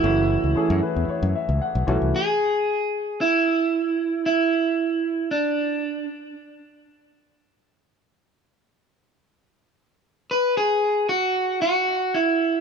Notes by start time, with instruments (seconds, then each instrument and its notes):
Already playing: grand piano E3 A3 C#4 F#4 A4, clean electric guitar E4
0.03 fingered electric bass F#1, grand piano E3 A3 C#4 F#4
0.44 fingered electric bass C#2
0.55 grand piano E3 A3 C#4 G#4, muted fingered electric bass stroke
0.70 fingered electric bass F#2
0.83 grand piano B4
0.96 fingered electric bass E2
1.08 grand piano C#5, muted fingered electric bass stroke
1.23 fingered electric bass F#2
1.35 grand piano E5
1.49 fingered electric bass C#2
1.61 grand piano F#5
1.75 fingered electric bass B1
1.87 fingered electric bass B1, grand piano E3 A3 C#4 F#4
2.02 fingered electric bass C2
2.16 clean electric guitar G#4
3.21 clean electric guitar E4
4.26 clean electric guitar E4
5.31 clean electric guitar D4
10.31 clean electric guitar B4
10.57 clean electric guitar G#4
11.09 clean electric guitar F#4
11.62 clean electric guitar F#4
12.14 clean electric guitar E4